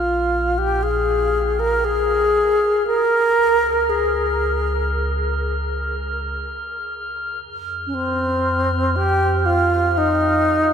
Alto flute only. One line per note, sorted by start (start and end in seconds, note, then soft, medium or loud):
0.00 0.60 F4 medium
0.58 0.84 G4 medium
0.83 1.61 G#4 medium
1.59 1.86 A#4 medium
1.84 2.86 G#4 medium
2.87 3.91 A#4 loud
3.89 5.41 G#4 medium
7.87 7.96 C#4 medium
7.94 8.97 C4 medium
8.96 9.47 G4 loud
9.46 9.99 F4 medium
9.98 10.73 D#4 medium